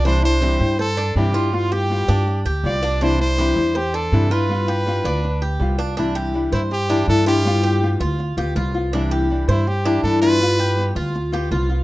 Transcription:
<<
  \new Staff \with { instrumentName = "Trumpet" } { \time 4/4 \key c \major \tempo 4 = 162 c''8 c''4. a'4 g'4 | f'8 g'2 r8 d''4 | c''8 c''4. g'8 a'4 b'8~ | b'2. r4 |
r4. e'8 g'4 a'8 g'8~ | g'4. r2 r8 | r4. e'8 g'4 a'8 b'8~ | b'4. r2 r8 | }
  \new Staff \with { instrumentName = "Cuban tres" } { \time 4/4 \key c \major d'4 g'4 c''8 d'4 f'8~ | f'8 g'4 d'4 g'4 d'8 | d'4 g'4 c''8 d'4 f'8~ | f'8 g'4 d'4 g'4 d'8 |
d'8 g'4 c''4 d'4 f'8~ | f'8 g'4 f'4 g'8 f'4 | d'8 g'4 c''4 d'4 f'8~ | f'8 g'4 f'4 g'8 f'4 | }
  \new Staff \with { instrumentName = "Nylon-string guitar" } { \time 4/4 \key c \major <c e g d' e'>8 <g d' e'>8 <c e g d' e'>8 <g d' e'>8 r4 <c e g d' e'>8 <g d' e'>8 | <g b f'>8 <b f'>8 <g b f'>8 <b f'>8 r4 <g b f'>8 <b f'>8 | <c e g d' e'>8 <g d' e'>8 <c e g d' e'>8 <g d' e'>8 r4 <c e g d' e'>8 <g d' e'>8 | <g b f'>8 <b f'>8 <g b f'>8 <b f'>8 r4 <g b f'>8 <b f'>8 |
<c e g d' e'>4 <e g d' e'>4 r8 <e g d' e'>8 <e g d' e'>8 <e g d' e'>8 | <g b f'>4 <g b f'>4 r8 <b f'>8 <g b f'>8 <b f'>8 | <c e g d' e'>4 <e g d' e'>4 r8 <e g d' e'>8 <e g d' e'>8 <e g d' e'>8 | <g b f'>4 <g b f'>4 r8 <b f'>8 <g b f'>8 <b f'>8 | }
  \new Staff \with { instrumentName = "Upright bass" } { \clef bass \time 4/4 \key c \major c,4. g,4. g,4~ | g,4. g,4 d,8 c,4~ | c,4. e,4. g,4~ | g,4. d,4. c,4~ |
c,4. g,4. g,4~ | g,4. d,4 d,8 c,4~ | c,4. g,4. g,4~ | g,4. d,4. c,4 | }
>>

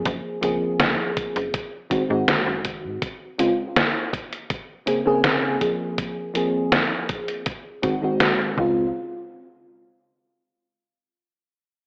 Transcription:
<<
  \new Staff \with { instrumentName = "FM electric piano" } { \time 4/4 \key des \major \tempo 4 = 81 <f bes c' aes'>8 <f bes c' aes'>4. r8 <ees aes c' ges'>16 <ees aes c' ges'>4~ <ees aes c' ges'>16 | r8 <des aes c' f'>16 r4. r16 <des bes c' aes'>16 <des bes c' aes'>8. <f bes c' aes'>8~ | <f bes c' aes'>8 <f bes c' aes'>4. r8 <ees aes c' ges'>16 <ees aes c' ges'>8. <des aes c' f'>8 | r1 | }
  \new Staff \with { instrumentName = "FM bass" } { \clef bass \time 4/4 \key des \major ges,,16 r16 des,16 des,16 des,16 r8 ges,,16 r8. aes,16 r16 ges,,8 aes,16 | r1 | r2. r8 des,8 | r1 | }
  \new DrumStaff \with { instrumentName = "Drums" } \drummode { \time 4/4 <hh bd>8 hh8 <hh sn>8 <hh bd>16 hh16 <hh bd>8 <hh bd>8 <hh sn>8 <hh bd>8 | <hh bd>8 hh8 <hh sn>8 <hh bd>16 hh16 <hh bd>8 hh8 <hh sn>8 <hh bd>8 | <hh bd>8 hh8 <hh sn>8 <hh bd>16 hh16 <hh bd>8 <hh bd>8 <hh sn>8 bd8 | r4 r4 r4 r4 | }
>>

